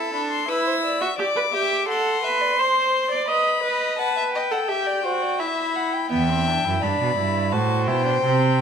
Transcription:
Already playing: viola E4, violin A4 A5
0.14 viola D4, violin B5
0.31 violin C6
0.48 viola E4, violin B4 E6
0.66 violin C5
0.84 violin D5
1.01 viola F#4, violin E5
1.18 viola G4, violin D5 D6
1.36 viola B4
1.53 viola G4, violin E5
1.88 viola A4, violin F#5 C6
2.23 viola B4, violin E5
2.41 violin D5
2.59 violin C5, viola C5
3.11 viola D5
3.28 violin B4 B5, viola D#5
3.63 viola B4, violin D#5
3.98 viola B4, violin F#5 A5
4.17 violin E5
4.34 violin D#5 G5
4.51 viola A4, violin F#5
4.69 viola G4, violin E5
4.87 violin D5
5.04 viola F#4, violin C5
5.22 violin D5
5.39 viola E4, violin E5 B5
5.76 violin F#5
5.93 violin G5
6.11 cello E2, viola B3, violin E5 G5
6.29 viola C4
6.47 viola D4
6.64 cello F#2, viola E4
6.82 cello G2, viola D4, violin D5 B5
7.00 cello B2
7.17 cello G2, viola E4
7.52 cello A2, viola F#4, violin C5 A5
7.87 cello B2, viola E4, violin G5
8.05 viola D4
8.23 cello C3, viola C4

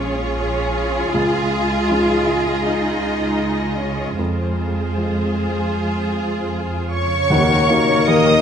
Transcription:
Already playing: double bass section A#1, felt piano A#1 G#3 C#4 F4, cello section C#4, viola section F4, violin section G#4 C#5
0.39 cello section C#4
1.14 double bass section C#2, felt piano C#2, cello section F4, violin section D#5
1.90 felt piano G#3 C#4 D#4
2.65 cello section D#4
3.79 cello section C#4
4.18 double bass section F2, felt piano F2, cello section G#3, viola section F4, violin section G#4 C5
4.98 felt piano G#3 F4
6.91 cello section C#3, violin section C#5 C#6, flute section C#5, oboe C#5
7.30 double bass section D#2, felt piano D#2 D#3, timpani D#3, french horn section D#3 A#3, viola section A#3 A#4, clarinet F#5
7.67 felt piano A#3 D#4 F#4, clarinet F5
8.07 felt piano D#2 D#3, cello section D#3, flute section D#5, violin section D#5 D#6, oboe D#5

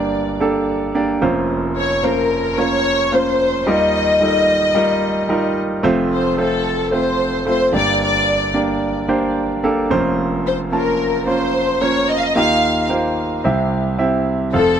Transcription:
Already playing: grand piano G1 G2 A#3 D4 G4 D5
0.40 grand piano A#3 D4 G4 A4
0.94 grand piano A#3 D4 G4 D5
1.21 grand piano F1 F2 A#3 C#4 F4 C5
1.77 violin section C#5
2.03 grand piano A#3 C#4 F4 C5, violin section A#4
2.58 grand piano A#3 C#4 F4 C#5, violin section C#5
3.12 grand piano A#3 C#4 F4 C5, violin section C5
3.67 grand piano D#2 D#3 G3 D#4 F4 A#4, violin section D#5
4.21 grand piano G3 D#4 F4 A4
4.28 grand piano A#4
4.75 grand piano G3 D#4 F4 A#4
5.29 grand piano G3 D#4 F4 A#4
5.83 grand piano F1 F2 A3 C4 F4 C5
6.12 violin section C5
6.37 grand piano A3 C4 F4 C5, violin section A4
6.91 grand piano A3 C4 F4 C5, violin section C5
7.46 grand piano A3 C4 F4 C5, violin section C5
7.72 grand piano G1 G2 A#3 D4 G4 D5, violin section D5
8.02 violin section D5
8.54 grand piano A#3 D4 G4 D5
9.08 grand piano A#3 D4 G4 C5
9.64 grand piano A#3 D4 G4 A4
9.90 grand piano F1 F2 A#3 C#4 F4 C5
10.47 violin section C5
10.72 grand piano A#3 C#4 F4 A5, violin section A#4
11.27 grand piano A#3 C#4 F4 C5, violin section C5
11.81 grand piano A#3 C#4 F4 C5, violin section C#5
12.09 violin section D#5
12.16 violin section F5
12.23 violin section D#5
12.35 grand piano D#2 D#3 A#3 F4 G4 D#5, violin section F5
12.89 grand piano A#3 F4 G4 C5
13.44 grand piano C2 C3 C4 E4 G4 E5
13.98 grand piano C4 E4 G4 E5
14.53 grand piano F1 F2 C4 F4 A4 F5, violin section A4

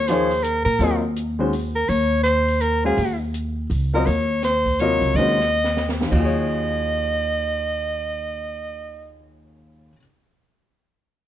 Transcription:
Already playing: upright bass D#2
0.07 upright piano F3 A#3 D#4 G#4 C#5, soprano saxophone C5, closed hi-hat
0.31 open hi-hat
0.43 soprano saxophone A#4, closed hi-hat
0.65 upright bass A#2, soprano saxophone A#4
0.79 upright bass D#2, upright piano F#3 C4 F4 A#4 D#5, open hi-hat
1.16 closed hi-hat
1.39 upright piano D#3 G#3 C#4 F#4 C5
1.53 open hi-hat
1.76 soprano saxophone A#4
1.89 upright bass D#2, soprano saxophone C#5, open hi-hat
2.23 soprano saxophone C5, closed hi-hat
2.48 open hi-hat
2.61 soprano saxophone A#4, closed hi-hat
2.84 upright piano G#3 C#4 F#4 C5 F5, soprano saxophone G#4
2.97 upright bass D#2, open hi-hat
3.34 closed hi-hat
3.70 upright bass C#2, open hi-hat
3.93 upright piano F#3 C4 F4 A#4 D#5, soprano saxophone A#4
4.06 upright bass D#2, soprano saxophone C#5, open hi-hat
4.42 soprano saxophone C5, snare, closed hi-hat
4.66 kick, open hi-hat
4.79 upright piano C3 F#3 F4 A#4 D#5, soprano saxophone C#5, closed hi-hat
5.01 upright bass C#2, open hi-hat
5.14 upright bass D#2, upright piano D#3 G#3, soprano saxophone D#5, open hi-hat
5.18 upright piano C#4 F#4 C5
5.28 snare
5.40 snare
5.64 snare
5.77 snare
5.89 snare
6.00 upright piano D#2, snare
6.06 upright piano D#3
6.11 upright bass D#2, upright piano F#3, soprano saxophone D#5, kick, crash
6.16 upright piano F4
6.20 upright piano G#4
6.25 upright piano C#5

